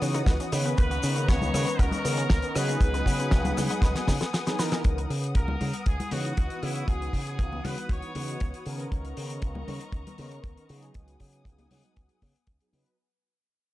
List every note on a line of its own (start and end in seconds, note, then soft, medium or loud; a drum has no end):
0.00 0.22 C#3 medium
0.00 0.49 E3 medium
0.00 0.73 B3 medium
0.00 0.49 B3 medium
0.00 0.09 C#4 medium
0.00 0.49 D#4 medium
0.00 0.50 F#4 loud
0.00 0.74 F#5 medium
0.00 0.73 D#6 medium
0.00 open hi-hat loud
0.00 shaker medium
0.14 0.22 D#4 medium
0.14 closed hi-hat medium
0.14 high bongo medium
0.14 shaker medium
0.26 0.37 C#2 loud
0.26 0.34 B3 loud
0.26 kick loud
0.26 snare loud
0.26 closed hi-hat medium
0.26 shaker medium
0.40 0.47 C#4 medium
0.40 closed hi-hat medium
0.40 shaker soft
0.51 0.72 C#3 loud
0.51 2.01 D#3 loud
0.51 2.02 B3 medium
0.51 2.02 C#4 medium
0.51 0.60 D#4 medium
0.51 2.02 B4 loud
0.51 open hi-hat loud
0.51 shaker medium
0.65 0.73 B3 medium
0.65 closed hi-hat medium
0.65 shaker medium
0.77 0.98 C#2 loud
0.77 0.89 A#3 loud
0.77 4.80 B3 medium
0.77 1.25 B4 loud
0.77 2.79 D#5 medium
0.77 2.79 A#5 medium
0.77 2.79 C#6 medium
0.77 kick loud
0.77 closed hi-hat medium
0.77 shaker medium
0.91 0.98 F#4 medium
0.91 closed hi-hat soft
0.91 shaker soft
1.03 1.30 C#3 medium
1.03 1.11 C#4 medium
1.03 open hi-hat loud
1.03 shaker medium
1.16 1.23 A#3 medium
1.16 closed hi-hat medium
1.16 shaker medium
1.28 1.49 C#2 loud
1.28 1.36 B3 loud
1.28 1.80 C#5 loud
1.28 kick loud
1.28 snare loud
1.28 closed hi-hat medium
1.28 shaker medium
1.42 1.49 C#4 medium
1.42 high conga medium
1.42 low conga medium
1.42 shaker soft
1.54 1.64 C#3 medium
1.54 1.62 A#3 loud
1.54 cross-stick medium
1.54 open hi-hat loud
1.54 low conga medium
1.54 shaker loud
1.67 1.74 B3 medium
1.67 closed hi-hat medium
1.67 shaker medium
1.79 1.89 C#2 medium
1.79 1.87 F#4 loud
1.79 2.56 A#4 loud
1.79 kick loud
1.79 cross-stick medium
1.79 closed hi-hat medium
1.79 shaker medium
1.91 2.00 A#3 medium
1.91 closed hi-hat medium
1.91 low conga medium
1.91 shaker soft
2.04 2.25 C#3 medium
2.04 2.52 D#3 medium
2.04 2.53 B3 medium
2.04 2.12 B3 medium
2.04 2.53 C#4 medium
2.04 2.53 A#4 medium
2.04 open hi-hat loud
2.04 shaker medium
2.17 2.25 C#4 medium
2.17 closed hi-hat medium
2.17 shaker soft
2.30 2.40 C#2 loud
2.30 2.38 A#3 loud
2.30 kick loud
2.30 snare loud
2.30 closed hi-hat medium
2.30 shaker medium
2.42 2.50 B3 medium
2.42 closed hi-hat medium
2.42 shaker soft
2.54 2.76 C#3 loud
2.54 4.05 F#3 medium
2.54 4.05 B3 medium
2.54 2.63 C#4 medium
2.54 4.05 D#4 medium
2.54 4.06 G#4 loud
2.54 4.59 B4 loud
2.54 cross-stick medium
2.54 open hi-hat loud
2.54 shaker medium
2.68 2.76 A#3 medium
2.68 closed hi-hat medium
2.68 shaker medium
2.80 3.01 C#2 loud
2.80 2.92 B3 loud
2.80 4.82 F#5 medium
2.80 4.82 G#5 medium
2.80 4.82 D#6 medium
2.80 kick loud
2.80 closed hi-hat loud
2.80 shaker medium
2.94 3.01 B4 medium
2.94 closed hi-hat medium
2.94 high bongo soft
2.94 shaker soft
3.06 3.34 C#3 medium
3.06 3.14 F#4 medium
3.06 kick medium
3.06 open hi-hat loud
3.06 shaker medium
3.19 3.27 B3 medium
3.19 closed hi-hat medium
3.19 high bongo soft
3.19 shaker medium
3.31 3.52 C#2 loud
3.31 3.39 D#4 loud
3.31 kick loud
3.31 snare loud
3.31 closed hi-hat medium
3.31 shaker medium
3.45 3.52 F#4 medium
3.45 closed hi-hat medium
3.45 high conga medium
3.45 low conga medium
3.45 shaker soft
3.57 3.68 C#3 medium
3.57 3.65 B3 loud
3.57 cross-stick medium
3.57 open hi-hat loud
3.57 low conga medium
3.57 shaker loud
3.70 3.78 D#4 medium
3.70 closed hi-hat medium
3.70 shaker medium
3.82 3.93 C#2 medium
3.82 3.90 B4 loud
3.82 kick loud
3.82 snare medium
3.82 closed hi-hat medium
3.82 shaker medium
3.95 4.03 B3 medium
3.95 snare medium
3.95 closed hi-hat medium
3.95 shaker soft
4.07 4.18 C#3 loud
4.07 4.13 D#4 loud
4.07 kick medium
4.07 snare medium
4.07 open hi-hat loud
4.07 high conga medium
4.07 shaker medium
4.21 4.28 G#4 medium
4.21 muted fingered electric bass stroke soft
4.21 snare medium
4.21 closed hi-hat medium
4.21 high bongo medium
4.21 shaker soft
4.33 4.45 G#4 medium
4.33 snare medium
4.33 closed hi-hat medium
4.33 shaker medium
4.46 4.56 F#3 loud
4.46 4.56 B3 medium
4.46 4.56 D#4 medium
4.46 4.56 G#4 loud
4.46 4.58 B4 medium
4.46 snare medium
4.46 closed hi-hat medium
4.46 shaker soft
4.59 5.10 E3 loud
4.59 5.10 B3 medium
4.59 5.10 D#4 medium
4.59 5.10 A#4 loud
4.59 4.64 B4 loud
4.59 snare medium
4.59 open hi-hat loud
4.59 shaker medium
4.72 4.83 G#4 loud
4.72 snare medium
4.72 closed hi-hat medium
4.72 shaker medium
4.84 5.05 C#2 medium
4.84 12.94 B3 medium
4.84 8.87 F#5 medium
4.84 8.87 D#6 medium
4.84 kick loud
4.84 closed hi-hat medium
4.98 closed hi-hat medium
5.10 5.37 C#3 medium
5.10 open hi-hat loud
5.24 closed hi-hat medium
5.35 5.55 C#2 loud
5.35 5.83 A#4 medium
5.35 kick loud
5.35 closed hi-hat medium
5.48 high conga medium
5.48 low conga medium
5.61 5.71 C#3 medium
5.61 open hi-hat loud
5.61 low conga loud
5.73 closed hi-hat medium
5.86 5.97 C#2 medium
5.86 6.12 G#4 medium
5.86 kick loud
5.86 closed hi-hat medium
6.00 closed hi-hat medium
6.00 low conga medium
6.11 6.32 C#3 medium
6.11 6.59 E3 medium
6.11 6.59 B3 medium
6.11 6.60 D#4 medium
6.11 6.63 F#4 medium
6.11 6.60 F#4 medium
6.11 open hi-hat loud
6.11 high conga medium
6.25 closed hi-hat medium
6.37 6.48 C#2 medium
6.37 kick loud
6.37 closed hi-hat medium
6.50 closed hi-hat medium
6.62 6.83 C#3 loud
6.62 8.12 E3 medium
6.62 8.12 B3 medium
6.62 8.12 D#4 medium
6.62 6.88 E4 medium
6.62 8.13 F#4 loud
6.62 open hi-hat loud
6.75 closed hi-hat medium
6.88 7.08 C#2 medium
6.88 7.24 G#4 medium
6.88 kick loud
6.88 closed hi-hat medium
7.02 closed hi-hat medium
7.13 7.41 C#3 medium
7.13 kick medium
7.13 open hi-hat loud
7.27 7.62 G#4 medium
7.27 closed hi-hat medium
7.39 7.59 C#2 loud
7.39 kick loud
7.39 closed hi-hat medium
7.52 high conga medium
7.65 7.75 C#3 medium
7.65 7.90 B4 loud
7.65 open hi-hat loud
7.65 low conga medium
7.78 closed hi-hat medium
7.89 8.00 C#2 medium
7.89 8.66 C#5 loud
7.89 kick loud
7.89 closed hi-hat medium
8.02 closed hi-hat soft
8.15 8.35 C#3 medium
8.15 8.63 E3 medium
8.15 8.63 B3 medium
8.15 8.63 D#4 medium
8.15 8.63 F#4 medium
8.15 open hi-hat loud
8.15 high conga medium
8.28 closed hi-hat medium
8.40 8.51 C#2 medium
8.40 kick loud
8.40 closed hi-hat medium
8.54 closed hi-hat medium
8.65 8.86 C#3 medium
8.65 10.15 D#3 medium
8.65 10.16 B3 medium
8.65 10.16 C#4 medium
8.65 10.16 A#4 loud
8.65 open hi-hat loud
8.79 closed hi-hat medium
8.91 9.12 C#2 medium
8.91 10.93 D#5 medium
8.91 10.93 A#5 medium
8.91 10.93 C#6 medium
8.91 kick loud
8.91 closed hi-hat medium
9.05 closed hi-hat soft
9.17 9.44 C#3 medium
9.17 open hi-hat loud
9.30 closed hi-hat medium
9.42 9.62 C#2 loud
9.42 kick loud
9.42 closed hi-hat medium
9.55 high conga medium
9.55 low conga medium
9.68 9.78 C#3 medium
9.68 open hi-hat loud
9.68 low conga medium
9.81 closed hi-hat medium
9.92 10.03 C#2 medium
9.92 kick loud
9.92 closed hi-hat medium
10.07 closed hi-hat medium
10.07 low conga medium
10.18 10.39 C#3 medium
10.18 10.66 D#3 medium
10.18 10.66 B3 medium
10.18 10.66 C#4 medium
10.18 10.67 A#4 medium
10.18 open hi-hat medium
10.18 high conga medium
10.31 closed hi-hat medium
10.44 10.54 C#2 medium
10.44 kick loud
10.44 closed hi-hat medium
10.57 closed hi-hat soft
10.68 10.89 C#3 loud
10.68 12.18 F#3 medium
10.68 12.19 B3 medium
10.68 12.19 D#4 medium
10.68 12.19 G#4 loud
10.68 open hi-hat loud
10.83 closed hi-hat medium
10.94 11.15 C#2 medium
10.94 12.96 F#5 medium
10.94 12.96 G#5 medium
10.94 12.96 D#6 medium
10.94 kick loud
10.94 closed hi-hat medium
11.08 closed hi-hat soft
11.20 11.47 C#3 medium
11.20 kick medium
11.20 open hi-hat loud
11.33 closed hi-hat medium
11.45 11.65 C#2 medium
11.45 kick loud
11.45 closed hi-hat medium
11.58 closed hi-hat soft
11.58 high conga medium
11.71 11.81 C#3 medium
11.71 open hi-hat loud
11.71 low conga medium
11.83 closed hi-hat medium
11.96 12.07 C#2 medium
11.96 kick loud
11.96 closed hi-hat medium
12.09 closed hi-hat soft
12.22 12.32 C#3 medium
12.22 kick medium
12.22 open hi-hat loud
12.22 high conga medium
12.36 closed hi-hat medium
12.47 12.58 C#2 medium
12.47 kick loud
12.47 closed hi-hat medium
12.60 12.69 F#3 medium
12.60 12.70 B3 medium
12.60 12.70 D#4 medium
12.60 12.70 G#4 loud
12.60 closed hi-hat soft
12.72 12.83 C#3 medium
12.72 12.96 F#3 medium
12.72 12.96 B3 medium
12.72 12.97 D#4 medium
12.72 12.97 B4 loud
12.72 open hi-hat medium
12.72 high conga medium
12.86 closed hi-hat medium